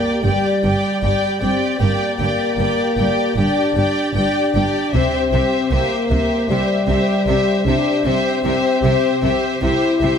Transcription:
Already playing: french horn section A#3, viola section G4, violin section D5 G5
0.23 double bass section G1, cello section G2, french horn section G3, viola section G4, violin section D5 G5
0.62 double bass section G1, cello section G2, viola section G4, violin section G5
0.67 violin section D5
1.01 double bass section G1, cello section G2, viola section G4, violin section D5 G5
1.40 double bass section G1, cello section G2, french horn section C4, viola section G4, violin section D5 G5
1.78 double bass section G1, cello section G2, french horn section A#3, viola section G4, violin section D5 G5
2.18 double bass section G1, cello section G2, viola section G4, violin section G5
2.23 violin section D5
2.56 double bass section G1, violin section G5
2.60 cello section G2, viola section G4, violin section D5
2.96 double bass section G1, cello section G2, viola section G4, violin section D5 G5
3.36 double bass section G1, cello section G2, french horn section D4, viola section G4, violin section D5 G5
3.75 double bass section G1, cello section G2, viola section G4, violin section D5 G5
4.14 double bass section G1, cello section G2, french horn section D4, viola section G4, violin section D5 G5
4.53 double bass section G1, cello section G2, viola section G4, violin section D5 G5
4.92 double bass section C2, cello section C3, french horn section C4, viola section G4, violin section C5 E5, taiko
5.31 double bass section C2, cello section C3, viola section G4, violin section C5 E5
5.71 double bass section C2, cello section C3, french horn section A#3, viola section G4, violin section C5 E5
6.09 double bass section C2, cello section C3, viola section G4, violin section C5 E5, taiko
6.48 double bass section C2, cello section C3, french horn section G3, viola section G4, violin section C5 E5
6.87 double bass section C2, cello section C3, viola section G4, violin section C5 E5
7.27 double bass section C2, cello section C3, viola section G4, violin section C5 E5
7.66 double bass section C2, cello section C3, french horn section D4, viola section G4, violin section C5 E5
8.05 double bass section C2, cello section C3, french horn section C4, viola section G4, violin section C5 E5
8.44 double bass section C2, cello section C3, viola section G4, violin section C5 E5
8.83 double bass section C2, cello section C3, viola section G4, violin section C5 E5
9.22 double bass section C2, cello section C3, viola section G4, violin section C5 E5
9.62 double bass section C2, cello section C3, french horn section E4, viola section G4, violin section C5 E5
10.00 double bass section C2, cello section C3, viola section G4, violin section C5 E5

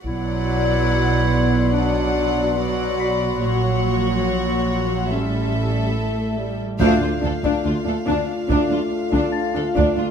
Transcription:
0.04 double bass section B1, cello section B2, viola section F#3, clarinet E4, violin section D5 F#5 B5 C6, taiko
1.73 viola section F#3, clarinet D4, violin section D5 F#5
2.57 viola section F#3, clarinet F#4, violin section D5 F#5
3.00 celesta B5 B6
3.41 double bass section A#1, cello section A#2, viola section F#3, clarinet F#4, violin section C#5 F#5
5.10 double bass section A1, cello section A2, viola section G3, clarinet C#4, violin section A4 E5
5.95 viola section A3
6.38 viola section G3
6.79 cello section D2, double bass section D2, timpani D3, french horn section A3 F4, viola section D4, violin section D4 F5, celesta G6, taiko
7.02 cello section D2, viola section D4, violin section F4
7.22 double bass section D2, cello section D2, viola section D4, violin section A4
7.43 cello section D2, viola section D4, violin section D4, taiko
7.63 double bass section D2, cello section D2, viola section D4, violin section F4
7.85 cello section D2, viola section D4, violin section A4
8.06 cello section D2, double bass section D2, viola section D4, violin section D4
8.49 double bass section D2, cello section D2, viola section D4, violin section D4, taiko
8.70 cello section D2, viola section D4, violin section F4
9.12 cello section D2, viola section D4, violin section D4, taiko
9.32 celesta A5 A6
9.54 cello section D2, viola section D4, violin section A4
9.75 double bass section D2, cello section D2, viola section D4, violin section D4, taiko
9.97 cello section D2, viola section D4, violin section F4

